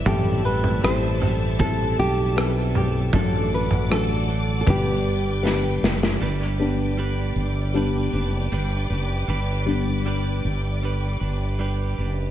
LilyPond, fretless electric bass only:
\new Staff \with { instrumentName = "Fretless electric bass" } { \clef bass \time 4/4 \key g \major \tempo 4 = 78 a,,4 a,,4. b,,4. | a,,8. a,,4~ a,,16 g,,4. fis,,8 | g,,4. g,,4 fis,,8 g,,8 fis,,8 | g,,4. g,,4 g,,4 fis,,8 | }